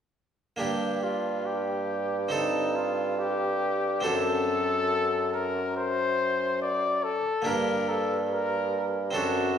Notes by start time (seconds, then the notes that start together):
0.56 G2 A#3 D4 G4
1.03 F4
1.46 G4
2.29 C4 D#4 A4
2.33 D#4
2.76 F4
3.19 G4
4.01 F#2 C4 D4 A4
4.05 F#2 A4
5.33 A#4
5.77 C5
6.62 D5
7.04 A4
7.42 A#3 D4 G4
7.46 G2 A#4
7.89 A4
8.31 A#4
9.11 C4 D4 A4
9.15 F#2 F#4